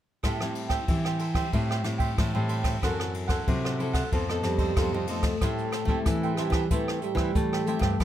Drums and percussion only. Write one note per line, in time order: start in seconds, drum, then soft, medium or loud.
0.23 kick soft
0.23 cross-stick medium
0.23 ride soft
0.40 cross-stick medium
0.55 ride soft
0.70 kick soft
0.70 cross-stick medium
0.70 ride soft
0.88 kick medium
0.88 ride soft
1.05 cross-stick medium
1.19 ride soft
1.35 kick medium
1.35 cross-stick medium
1.35 ride soft
1.53 kick medium
1.53 ride soft
1.71 cross-stick medium
1.84 cross-stick medium
1.84 ride soft
2.00 kick medium
2.00 ride soft
2.18 kick medium
2.18 cross-stick medium
2.18 ride soft
2.49 ride soft
2.64 kick medium
2.64 cross-stick medium
2.64 ride soft
2.83 kick soft
2.83 cross-stick soft
2.83 ride soft
3.00 cross-stick medium
3.14 ride soft
3.29 kick medium
3.29 cross-stick soft
3.29 ride soft
3.48 kick medium
3.48 ride soft
3.65 cross-stick medium
3.80 ride soft
3.94 kick medium
3.94 cross-stick medium
3.94 ride soft
4.12 kick medium
4.12 ride soft
4.29 cross-stick medium
4.43 cross-stick soft
4.43 ride soft
4.58 kick medium
4.58 ride soft
4.76 kick medium
4.76 cross-stick medium
4.76 ride soft
5.07 ride soft
5.23 kick medium
5.23 cross-stick medium
5.23 ride soft
5.41 kick medium
5.41 cross-stick medium
5.41 closed hi-hat medium
5.58 closed hi-hat soft
5.72 cross-stick medium
5.72 closed hi-hat soft
5.87 kick medium
5.87 closed hi-hat soft
6.06 kick medium
6.06 cross-stick medium
6.06 closed hi-hat medium
6.23 closed hi-hat soft
6.37 cross-stick medium
6.37 closed hi-hat soft
6.52 kick medium
6.52 cross-stick medium
6.52 closed hi-hat soft
6.70 kick medium
6.70 closed hi-hat medium
6.88 cross-stick medium
7.02 closed hi-hat soft
7.17 kick medium
7.17 cross-stick medium
7.35 kick medium
7.35 closed hi-hat medium
7.53 cross-stick medium
7.67 closed hi-hat soft
7.82 kick medium
7.82 cross-stick medium
8.00 kick medium
8.00 cross-stick medium
8.00 closed hi-hat medium